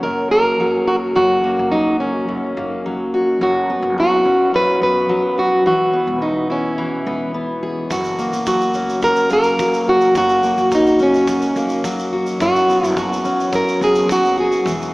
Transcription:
Already playing: C#2 F#3 A#3 C#4
0.03 F#2 A#4
0.31 F#1 A#3 A#4
0.60 F#3
0.88 F#4
1.15 F#1 F#2 F#4
1.44 A#3
1.59 F#1
1.71 F#3 D#4
2.00 C#2 C#4
2.28 F#2
2.57 F#1 A#3
2.86 F#3
3.14 F#4
3.41 F#1 F#2 F#4
3.70 B3
3.82 F#1
3.98 F#3 F#4
4.25 F#2 C#4
4.54 F#2 B4
4.81 F#1 B3 B4
5.09 F#3
5.38 F#4
5.65 E1 E3 F#4
5.93 B3
6.07 E1
6.21 B3 D#4
6.50 B1 C#4 E4
6.78 E3
7.06 E1 B3
7.34 B3
7.63 G#4
7.90 F#1 F#2 F#4, kick, shaker
8.04 shaker
8.19 A#3, shaker
8.33 F#1, shaker
8.46 F#3 F#4, kick, shaker
8.62 shaker
8.74 C#2 C#4, shaker
8.89 shaker
9.02 F#2 A#4, kick, shaker
9.16 shaker
9.30 F#1 A#3 A#4, shaker
9.44 shaker
9.59 F#3, kick, shaker
9.74 shaker
9.87 F#4
10.01 shaker
10.15 F#1 F#2 F#4, kick, shaker
10.29 shaker
10.43 A#3, shaker
10.58 F#1, shaker
10.71 F#3 D#4, kick, shaker
10.87 shaker
10.99 C#2 C#4, shaker
11.14 shaker
11.27 F#2, kick, shaker
11.42 shaker
11.56 F#1 A#3, shaker
11.69 shaker
11.84 F#3, kick, shaker
11.99 shaker
12.13 F#4
12.26 shaker
12.40 F#1 F#2 F#4, kick, shaker
12.55 shaker
12.68 B3, shaker
12.83 F#1 E4, shaker
12.96 F#3 F#4, kick, shaker
13.13 shaker
13.24 F#2 C#4, shaker
13.40 shaker
13.52 F#2 A#4, kick, shaker
13.68 shaker
13.81 F#1 B3 G#4, shaker
13.95 shaker
14.09 F#3 F#4, kick, shaker
14.25 shaker
14.37 F#4 G#4
14.52 shaker
14.65 E1 E3, kick, shaker
14.82 shaker

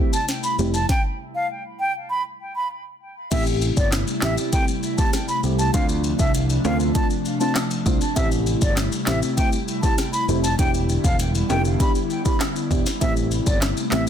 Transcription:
Already playing: C3 G3 A3 C4 E4
0.00 E4 G4
0.13 A5, maracas
0.28 snare, closed hi-hat, maracas
0.43 B5, maracas
0.59 F1 A3 C4 E4 G4, maracas
0.74 A5, maracas
0.89 G5, kick, snare
1.35 F5
1.80 G5
2.10 B5
2.56 B5
3.31 A1 C3 G3 A3 C4 E4 G4 E5, kick, closed hi-hat, crash, maracas
3.47 maracas
3.62 maracas
3.77 G1 D5, kick, maracas
3.92 snare, clap, closed hi-hat, maracas
4.07 maracas
4.22 A1 A3 C4 E4 G4 E5, snare, clap, maracas
4.38 maracas
4.53 A3 C4 E4 G4 G5, kick, closed hi-hat, maracas
4.68 maracas
4.83 maracas
4.98 A3 C4 E4 G4 A5, kick, maracas
5.13 cross-stick, snare, closed hi-hat, maracas
5.28 B5, maracas
5.44 C2 A3 C4 E4 G4, maracas
5.59 A5, maracas
5.74 D2 F3 A3 C4 D4 F4 F5, kick, closed hi-hat, maracas
5.89 maracas
6.04 maracas
6.19 C2 E5, kick, maracas
6.34 closed hi-hat, maracas
6.50 maracas
6.65 D2 A3 C4 D4 F4 F5, high timbale, maracas
6.80 maracas
6.95 A3 C4 D4 F4 A5, kick, closed hi-hat, maracas
7.10 maracas
7.25 maracas
7.40 A3 C4 D4 F4 A5, maracas
7.55 cross-stick, snare, clap, closed hi-hat, maracas
7.71 maracas
7.86 C2 A3 C4 D4 F4, kick, maracas
8.01 maracas
8.16 A1 G3 A3 C4 E4 G4 E5, kick, closed hi-hat, maracas
8.32 maracas
8.46 maracas
8.61 G1 D5, kick, maracas
8.76 snare, clap, closed hi-hat, maracas
8.92 maracas
9.06 A1 A3 C4 E4 G4 E5, snare, clap, maracas
9.22 maracas
9.37 A3 C4 E4 G4 G5, kick, closed hi-hat, maracas
9.53 maracas
9.68 maracas
9.83 A3 C4 E4 G4 A5, kick, maracas
9.98 cross-stick, snare, closed hi-hat, maracas
10.13 B5, maracas
10.28 F1 A3 C4 E4 G4, maracas
10.43 A5, maracas
10.59 E1 D3 B3 D4 E4 G4 G5, kick, closed hi-hat, maracas
10.74 maracas
10.89 maracas
11.04 E1 F5, kick, maracas
11.19 closed hi-hat, maracas
11.35 maracas
11.50 F1 B3 D4 E4 G4 G5, high timbale, maracas
11.65 maracas
11.80 B3 D4 E4 G4 B5, kick, closed hi-hat, maracas
11.95 maracas
12.10 maracas
12.25 B3 D4 E4 G4 B5, kick, maracas
12.40 cross-stick, snare, clap, closed hi-hat, maracas
12.56 maracas
12.71 E1 B3 D4 E4 G4, kick, maracas
12.86 snare, maracas
13.01 A1 C3 A3 C4 E4 G4 E5, kick, closed hi-hat, maracas
13.17 maracas
13.31 maracas
13.46 G1 D5, kick, maracas
13.61 snare, clap, closed hi-hat, maracas
13.77 maracas
13.91 A1 A3 C4 E4 G4 E5, snare, clap, maracas

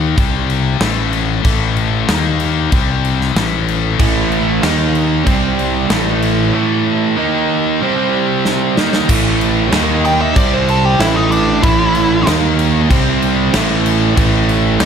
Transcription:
Already playing: D#2 D#3 A#3 D#4
0.17 C2 C3 G3 C4, kick, crash
0.50 crash
0.80 A1 A2 E3 A3, snare, crash
1.13 crash
1.45 A1 A2 E3 A3, kick, crash
1.77 crash
2.09 D#2 D#3 A#3 D#4, snare, crash
2.40 crash
2.72 C2 C3 G3 C4, kick, crash
3.05 crash
3.21 snare
3.36 A1 A2 E3 A3, snare, crash
3.68 crash
4.00 A1 A2 E3 A3, kick, crash
4.32 crash
4.63 D#2 D#3 A#3 D#4, snare, crash
4.95 crash
5.26 C2 C3 G3 C4, kick, crash
5.59 crash
5.90 A1 A2 E3 A3, snare, crash
6.22 crash
6.53 A2 E3 A3
7.17 D#3 A#3 D#4
7.81 C3 G3 C4
8.45 snare
8.77 D#3 A#3 D#4, snare
8.93 snare
9.09 A1 A2 E3 A3, kick, crash
9.41 crash
9.72 D#2 D#3 A#3 D#4, snare, crash
10.05 G5, crash
10.21 E5
10.36 C2 C3 G3 C4 D5, kick, crash
10.53 C5
10.68 A4, crash
10.85 G4
10.99 A1 A2 E3 A3 E4, snare, crash
11.16 D#4
11.31 D4, crash
11.63 A1 A2 E3 A3 E4, kick, crash
11.95 crash
12.27 D#2 D#3 A#3 D#4, snare, crash
12.59 crash
12.89 C2 C3 G3 C4, kick, crash
13.22 crash
13.54 A1 A2 E3 A3, snare, crash
13.86 crash
14.16 A1 A2 E3 A3, kick, crash
14.49 crash
14.80 D#2 D#3 A#3 D#4, snare, crash

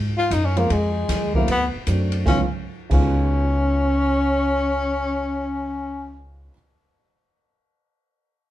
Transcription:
Already playing: G#2
0.17 F4
0.31 F#2 D#4, kick, hi-hat pedal, ride
0.45 C#4
0.56 F3 G#3 A#3 C4 F4, ride
0.70 F2 G#3, kick, ride
1.09 D#2, kick, snare, hi-hat pedal, ride
1.34 F#3 A3 A#3 C4 E4, kick
1.48 D2 B3, ride
1.75 muted upright bass stroke
1.87 F#2 F#3 A3 C4 D4, kick, hi-hat pedal, ride
2.12 ride
2.25 C#2 C#3 G#3 B3 C#4 D#4 F4, kick, snare
2.89 C#2 C#3 G#3 B3 C#4 D#4 F4, kick, crash

